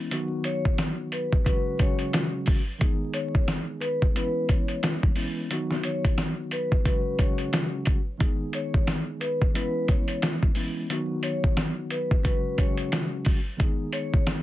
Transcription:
0.11 1.46 D#3 medium
0.11 1.44 F#3 medium
0.11 1.47 B3 medium
0.11 1.47 D#4 medium
0.11 1.46 F#4 loud
0.11 closed hi-hat medium
0.44 0.75 C#5 medium
0.44 closed hi-hat medium
0.65 kick medium
0.78 snare loud
0.78 closed hi-hat medium
1.12 1.31 B4 medium
1.12 closed hi-hat medium
1.33 kick loud
1.45 1.77 C#3 medium
1.45 1.77 F#3 medium
1.45 1.78 G#3 medium
1.45 1.78 C#4 medium
1.45 1.79 F#4 loud
1.45 1.76 B4 medium
1.45 kick loud
1.45 closed hi-hat loud
1.79 2.59 C#3 medium
1.79 2.60 F#3 medium
1.79 2.60 G#3 medium
1.79 2.60 C#4 medium
1.79 2.61 F#4 loud
1.79 2.11 C#5 medium
1.79 kick medium
1.79 closed hi-hat medium
1.99 closed hi-hat medium
2.13 snare loud
2.13 closed hi-hat medium
2.46 kick medium
2.46 open hi-hat medium
2.78 4.15 D#3 medium
2.78 4.13 G#3 medium
2.78 4.14 B3 medium
2.78 4.16 D#4 medium
2.78 4.16 G#4 medium
2.78 kick loud
2.78 closed hi-hat medium
3.14 3.45 C#5 medium
3.14 closed hi-hat medium
3.35 kick medium
3.48 snare loud
3.48 closed hi-hat medium
3.81 3.99 B4 medium
3.81 closed hi-hat medium
4.02 kick loud
4.14 5.09 E3 medium
4.14 5.10 G#3 medium
4.14 5.10 B3 medium
4.14 5.11 C#4 medium
4.14 5.11 E4 loud
4.14 4.47 B4 medium
4.14 closed hi-hat loud
4.49 kick medium
4.49 closed hi-hat medium
4.68 closed hi-hat medium
4.83 snare loud
4.83 closed hi-hat medium
5.03 kick medium
5.14 5.47 E3 medium
5.14 5.48 G#3 medium
5.14 5.48 B3 medium
5.14 5.48 C#4 medium
5.14 5.49 E4 medium
5.14 open hi-hat medium
5.50 6.85 D#3 medium
5.50 6.84 F#3 medium
5.50 6.86 B3 medium
5.50 6.86 D#4 medium
5.50 6.86 F#4 loud
5.50 closed hi-hat medium
5.71 snare soft
5.83 6.15 C#5 medium
5.83 closed hi-hat medium
6.04 kick medium
6.04 closed hi-hat medium
6.18 snare loud
6.18 closed hi-hat medium
6.51 6.70 B4 medium
6.51 closed hi-hat medium
6.72 kick medium
6.84 7.16 C#3 medium
6.84 7.17 F#3 medium
6.84 7.17 G#3 medium
6.84 7.17 C#4 medium
6.84 7.18 F#4 medium
6.84 7.16 B4 medium
6.84 kick loud
6.84 closed hi-hat loud
7.19 7.99 C#3 loud
7.19 7.99 F#3 medium
7.19 7.99 G#3 medium
7.19 8.00 C#4 medium
7.19 8.00 F#4 loud
7.19 7.50 C#5 medium
7.19 kick medium
7.19 closed hi-hat medium
7.38 closed hi-hat medium
7.53 snare loud
7.53 closed hi-hat medium
7.85 kick medium
7.85 closed hi-hat medium
8.18 9.54 D#3 medium
8.18 9.53 G#3 medium
8.18 9.53 B3 medium
8.18 9.55 D#4 medium
8.18 9.55 G#4 medium
8.18 kick loud
8.18 closed hi-hat medium
8.53 8.85 C#5 medium
8.53 closed hi-hat medium
8.74 kick medium
8.87 snare loud
8.87 closed hi-hat medium
9.21 9.39 B4 medium
9.21 closed hi-hat medium
9.42 kick medium
9.53 10.49 E3 medium
9.53 10.49 G#3 medium
9.53 10.50 B3 medium
9.53 10.50 C#4 medium
9.53 10.50 E4 loud
9.53 9.86 B4 medium
9.53 closed hi-hat loud
9.88 10.20 C#5 medium
9.88 kick medium
9.88 closed hi-hat medium
10.08 closed hi-hat medium
10.22 snare loud
10.22 closed hi-hat medium
10.43 kick medium
10.53 10.86 E3 medium
10.53 10.87 G#3 medium
10.53 10.87 B3 medium
10.53 10.88 C#4 medium
10.53 10.88 E4 medium
10.53 open hi-hat medium
10.89 12.24 D#3 medium
10.89 12.23 F#3 medium
10.89 12.25 B3 medium
10.89 12.26 D#4 medium
10.89 12.25 F#4 loud
10.89 closed hi-hat medium
11.23 11.54 C#5 medium
11.23 closed hi-hat medium
11.44 kick medium
11.57 snare loud
11.57 closed hi-hat medium
11.90 12.09 B4 medium
11.90 closed hi-hat medium
12.11 kick medium
12.23 12.56 C#3 medium
12.23 12.56 F#3 medium
12.23 12.57 G#3 medium
12.23 12.57 C#4 medium
12.23 12.57 F#4 loud
12.23 12.54 B4 medium
12.23 kick loud
12.23 closed hi-hat loud
12.58 13.38 C#3 loud
12.58 13.38 F#3 medium
12.58 13.39 G#3 medium
12.58 13.39 C#4 medium
12.58 13.39 F#4 loud
12.58 12.89 C#5 medium
12.58 kick medium
12.58 closed hi-hat medium
12.77 closed hi-hat medium
12.92 snare loud
12.92 closed hi-hat medium
13.25 kick medium
13.25 open hi-hat medium
13.57 14.43 D#3 medium
13.57 14.43 G#3 medium
13.57 14.43 B3 medium
13.57 14.43 D#4 medium
13.57 14.43 G#4 medium
13.57 kick loud
13.57 closed hi-hat medium
13.93 14.23 C#5 medium
13.93 closed hi-hat medium
14.14 kick medium
14.27 snare loud
14.27 closed hi-hat medium

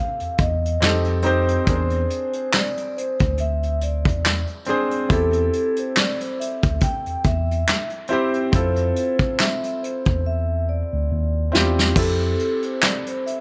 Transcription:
0.00 0.80 C4 medium
0.00 0.83 E4 medium
0.00 0.83 G4 medium
0.00 0.83 A4 medium
0.00 0.39 F5 medium
0.20 0.28 E2 soft
0.20 closed hi-hat soft
0.38 0.77 E2 medium
0.38 1.02 D#5 medium
0.38 kick medium
0.38 closed hi-hat medium
0.65 closed hi-hat medium
0.80 1.57 F2 medium
0.80 1.19 C4 medium
0.80 1.20 D#4 medium
0.80 1.21 G4 medium
0.80 1.21 A4 medium
0.80 snare loud
0.80 clap medium
0.80 closed hi-hat medium
1.04 closed hi-hat soft
1.22 1.62 C4 medium
1.22 1.63 D#4 medium
1.22 1.63 G4 medium
1.22 closed hi-hat medium
1.26 1.64 C5 loud
1.48 closed hi-hat soft
1.65 2.05 E2 loud
1.65 3.20 C4 medium
1.65 3.21 D4 medium
1.65 3.21 G#4 medium
1.65 1.75 A#4 medium
1.65 2.31 C5 loud
1.65 kick loud
1.65 closed hi-hat medium
1.75 3.25 C5 medium
1.90 closed hi-hat soft
2.10 closed hi-hat medium
2.33 2.52 C5 medium
2.33 closed hi-hat medium
2.53 2.76 D5 medium
2.53 snare loud
2.53 clap medium
2.53 closed hi-hat medium
2.77 2.95 D5 medium
2.77 closed hi-hat medium
2.97 3.35 C5 medium
2.97 closed hi-hat medium
3.19 4.06 D2 medium
3.19 kick medium
3.19 closed hi-hat soft
3.37 3.78 E5 medium
3.37 closed hi-hat medium
3.63 closed hi-hat soft
3.81 4.45 D5 medium
3.81 closed hi-hat medium
4.05 4.44 E2 medium
4.05 kick medium
4.05 closed hi-hat soft
4.25 snare loud
4.25 clap medium
4.25 closed hi-hat medium
4.47 closed hi-hat soft
4.65 5.05 C4 medium
4.65 5.06 D4 medium
4.65 closed hi-hat medium
4.69 5.07 G#4 medium
4.69 5.07 C5 loud
4.91 closed hi-hat soft
5.09 5.48 E2 loud
5.09 6.63 C4 medium
5.09 6.64 E4 medium
5.09 6.64 G4 medium
5.09 5.74 A4 loud
5.09 6.65 A4 medium
5.09 kick medium
5.09 closed hi-hat medium
5.33 closed hi-hat soft
5.53 closed hi-hat medium
5.76 5.95 C5 medium
5.76 closed hi-hat soft
5.97 6.19 D5 loud
5.97 snare loud
5.97 clap medium
5.97 closed hi-hat medium
6.20 6.38 C5 medium
6.20 closed hi-hat soft
6.40 6.78 E5 medium
6.40 closed hi-hat medium
6.62 6.80 D2 medium
6.62 kick medium
6.62 closed hi-hat soft
6.80 7.21 G5 medium
6.80 kick medium
6.80 closed hi-hat medium
7.06 7.14 E2 soft
7.06 closed hi-hat soft
7.24 7.62 E2 medium
7.24 7.88 E5 medium
7.24 kick medium
7.24 closed hi-hat medium
7.51 closed hi-hat soft
7.68 snare loud
7.68 clap medium
7.68 closed hi-hat medium
7.90 closed hi-hat soft
8.07 8.48 C4 loud
8.07 8.49 E4 medium
8.07 closed hi-hat medium
8.12 8.49 G4 medium
8.12 8.50 C5 loud
8.34 closed hi-hat soft
8.52 8.91 F2 loud
8.52 10.06 C4 medium
8.52 10.07 E4 medium
8.52 10.07 F4 medium
8.52 10.08 A4 medium
8.52 9.17 C5 loud
8.52 kick loud
8.52 closed hi-hat medium
8.76 closed hi-hat soft
8.96 closed hi-hat medium
9.19 kick medium
9.19 closed hi-hat soft
9.39 9.61 E5 loud
9.39 snare medium
9.39 clap medium
9.39 closed hi-hat medium
9.63 9.81 E5 medium
9.63 closed hi-hat medium
9.83 10.21 C5 medium
9.83 closed hi-hat medium
10.05 10.82 E2 medium
10.05 kick medium
10.05 closed hi-hat soft
10.26 10.64 E5 medium
10.69 11.93 D5 medium
10.93 11.09 D2 medium
11.12 11.49 D#2 medium
11.52 11.91 E2 medium
11.52 11.91 C4 medium
11.52 11.91 E4 medium
11.52 11.92 F4 medium
11.52 11.93 G4 medium
11.52 snare medium
11.79 snare medium
11.95 12.34 F2 loud
11.95 13.40 C4 medium
11.95 13.40 E4 medium
11.95 13.40 G4 medium
11.95 12.60 A4 loud
11.95 13.40 A4 medium
11.95 kick loud
11.95 crash medium
12.19 closed hi-hat soft
12.39 closed hi-hat medium
12.62 12.81 C5 medium
12.62 closed hi-hat soft
12.83 13.05 D5 medium
12.83 snare loud
12.83 clap medium
12.83 closed hi-hat medium
13.06 13.24 C5 medium
13.06 closed hi-hat medium
13.26 13.40 E5 medium
13.26 closed hi-hat medium

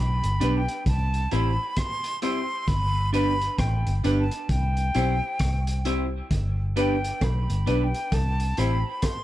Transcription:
0.00 0.20 B1 loud
0.00 0.59 B5 medium
0.24 0.39 G1 medium
0.24 closed hi-hat medium
0.40 0.66 B1 medium
0.40 0.58 B3 loud
0.40 0.60 D4 medium
0.40 0.59 D4 medium
0.40 0.60 G4 medium
0.40 0.59 G4 medium
0.40 0.59 B4 loud
0.40 0.61 B4 medium
0.40 closed hi-hat medium
0.58 0.87 G5 medium
0.68 closed hi-hat medium
0.86 1.26 C2 loud
0.86 1.34 A5 loud
0.86 kick loud
0.86 closed hi-hat medium
1.14 closed hi-hat medium
1.31 1.57 A1 loud
1.31 1.49 C4 medium
1.31 1.51 E4 medium
1.31 1.49 E4 medium
1.31 1.51 G4 medium
1.31 1.50 G4 medium
1.31 1.50 C5 loud
1.31 1.51 C5 medium
1.31 1.80 B5 loud
1.31 closed hi-hat medium
1.77 2.22 C6 loud
1.77 kick loud
1.77 cross-stick loud
1.77 closed hi-hat loud
2.04 closed hi-hat medium
2.22 2.40 C4 loud
2.22 2.42 E4 medium
2.22 2.40 E4 medium
2.22 2.42 G4 medium
2.22 2.40 G4 loud
2.22 2.42 C5 medium
2.22 2.41 C5 loud
2.22 2.69 C6 loud
2.22 closed hi-hat medium
2.68 3.48 G1 loud
2.68 3.13 B5 loud
2.68 kick loud
2.68 closed hi-hat medium
3.13 3.31 B3 loud
3.13 3.32 D4 medium
3.13 3.31 D4 medium
3.13 3.33 G4 medium
3.13 3.31 G4 medium
3.13 3.33 B4 loud
3.13 3.31 B4 loud
3.13 3.60 B5 loud
3.13 closed hi-hat medium
3.41 closed hi-hat medium
3.58 3.83 A1 loud
3.58 3.95 G5 medium
3.58 kick loud
3.58 cross-stick loud
3.58 closed hi-hat medium
3.87 4.02 G1 loud
3.87 closed hi-hat medium
4.04 4.29 G1 medium
4.04 4.21 B3 medium
4.04 4.23 D4 medium
4.04 4.22 D4 medium
4.04 4.22 G4 medium
4.04 4.24 G4 medium
4.04 4.22 B4 loud
4.04 4.24 B4 loud
4.04 closed hi-hat medium
4.20 4.52 A5 medium
4.31 closed hi-hat medium
4.49 4.90 C2 loud
4.49 5.86 G5 medium
4.49 kick loud
4.49 closed hi-hat medium
4.77 closed hi-hat medium
4.95 5.20 B1 medium
4.95 5.12 C4 medium
4.95 5.14 E4 medium
4.95 5.13 E4 medium
4.95 5.13 G4 medium
4.95 5.14 G4 medium
4.95 5.13 C5 loud
4.95 5.15 C5 medium
4.95 closed hi-hat medium
5.39 6.20 C2 medium
5.39 kick loud
5.39 cross-stick loud
5.39 closed hi-hat loud
5.67 5.75 G4 soft
5.67 5.75 C5 soft
5.67 closed hi-hat medium
5.85 6.03 C4 loud
5.85 6.05 E4 medium
5.85 6.03 E4 loud
5.85 6.05 G4 medium
5.85 6.03 G4 loud
5.85 6.05 C5 medium
5.85 6.04 C5 loud
5.85 closed hi-hat medium
6.31 7.11 G1 medium
6.31 kick loud
6.31 closed hi-hat medium
6.76 6.94 B3 medium
6.76 6.94 D4 medium
6.76 6.96 D4 loud
6.76 6.96 G4 medium
6.76 6.94 G4 medium
6.76 6.96 B4 loud
6.76 6.94 B4 loud
6.76 7.25 G5 medium
6.76 closed hi-hat medium
7.04 closed hi-hat medium
7.21 7.46 B1 loud
7.21 7.85 B5 medium
7.21 kick loud
7.21 cross-stick loud
7.21 closed hi-hat medium
7.21 cowbell medium
7.50 7.65 G1 loud
7.50 closed hi-hat medium
7.66 7.92 B1 medium
7.66 7.84 B3 medium
7.66 7.86 D4 medium
7.66 7.85 D4 medium
7.66 7.85 G4 medium
7.66 7.86 G4 medium
7.66 7.87 B4 medium
7.66 7.85 B4 loud
7.66 closed hi-hat medium
7.84 8.15 G5 medium
7.94 closed hi-hat medium
8.12 8.52 C2 loud
8.12 8.61 A5 loud
8.12 kick loud
8.12 closed hi-hat medium
8.12 cowbell medium
8.40 closed hi-hat medium
8.57 8.82 A1 loud
8.57 8.75 C4 loud
8.57 8.75 E4 medium
8.57 8.77 E4 medium
8.57 8.76 G4 medium
8.57 8.77 G4 medium
8.57 8.76 C5 loud
8.57 8.77 C5 medium
8.57 9.06 B5 medium
8.57 closed hi-hat medium
9.02 9.24 C6 loud
9.02 kick loud
9.02 cross-stick loud
9.02 closed hi-hat loud
9.02 cowbell medium

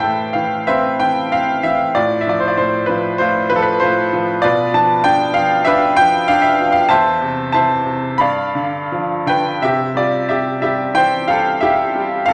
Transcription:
0.00 1.91 A2 soft
0.00 0.34 E3 soft
0.00 1.28 A3 soft
0.00 0.64 B4 medium
0.00 0.64 C5 medium
0.00 0.67 E5 medium
0.00 0.35 G5 medium
0.00 1.97 A5 medium
0.33 0.98 E3 soft
0.33 0.67 F5 medium
0.67 1.30 C4 medium
0.67 1.91 B4 medium
0.67 1.91 C5 medium
0.67 0.97 E5 medium
1.00 1.62 E3 soft
1.00 1.32 G5 medium
1.32 1.94 C4 soft
1.32 1.64 F5 medium
1.63 1.95 E3 soft
1.63 1.96 E5 medium
1.95 2.56 A2 medium
1.95 3.17 F4 medium
1.95 2.21 D5 medium
2.21 2.31 E5 medium
2.27 2.88 F3 soft
2.27 2.39 D5 medium
2.40 2.49 C5 medium
2.48 2.57 D5 medium
2.57 3.19 A2 soft
2.57 2.89 C5 medium
2.86 3.50 F3 soft
2.86 3.16 B4 medium
3.18 3.82 A2 medium
3.18 3.80 F4 medium
3.18 3.52 C5 medium
3.50 4.12 F3 soft
3.50 3.57 B4 medium
3.56 3.64 A4 medium
3.62 3.82 B4 medium
3.80 4.42 A2 medium
3.80 4.39 F4 medium
3.80 4.24 C5 medium
4.13 4.43 F3 medium
4.42 6.87 B2 medium
4.42 5.63 F4 medium
4.42 5.64 B4 medium
4.42 4.74 D5 medium
4.74 5.34 F3 soft
4.74 5.03 A5 medium
5.04 5.65 D4 medium
5.04 5.37 G5 loud
5.34 5.97 F3 soft
5.34 5.64 F5 medium
5.65 6.27 D4 medium
5.65 6.86 B4 medium
5.65 5.98 E5 loud
5.97 6.57 F3 soft
5.97 6.29 G5 loud
6.28 6.89 D4 medium
6.28 6.44 F5 loud
6.42 6.75 E5 medium
6.59 6.89 F3 soft
6.72 6.90 F5 medium
6.89 8.16 E2 medium
6.89 7.53 C5 medium
6.89 7.53 E5 medium
6.89 7.51 A5 loud
7.22 7.84 C3 soft
7.52 8.18 E3 medium
7.52 8.17 C5 medium
7.52 8.17 E5 medium
7.52 8.22 A5 medium
7.86 8.19 C3 soft
8.18 9.58 G2 medium
8.18 9.59 D5 medium
8.18 9.58 F5 medium
8.18 9.22 B5 medium
8.55 9.25 D3 soft
8.92 9.60 F3 soft
9.26 9.61 D3 soft
9.26 9.61 B4 medium
9.26 9.60 G5 medium
9.62 10.27 C3 soft
9.62 9.95 G4 medium
9.62 9.94 E5 medium
9.95 10.60 G3 soft
9.95 10.29 F4 medium
9.95 10.28 D5 medium
10.29 11.58 C3 soft
10.29 10.62 G4 medium
10.29 10.60 E5 medium
10.62 11.26 G3 soft
10.62 10.95 G4 medium
10.62 10.97 E5 medium
10.94 12.23 E3 soft
10.94 11.27 C5 medium
10.94 11.30 G5 medium
11.28 11.94 G3 soft
11.28 11.61 A4 medium
11.28 11.63 F5 medium
11.61 12.26 E4 soft
11.61 12.24 G4 medium
11.61 12.29 E5 medium
11.95 12.27 G3 soft
12.26 12.33 C3 medium
12.26 12.33 A4 medium
12.26 12.33 F5 medium

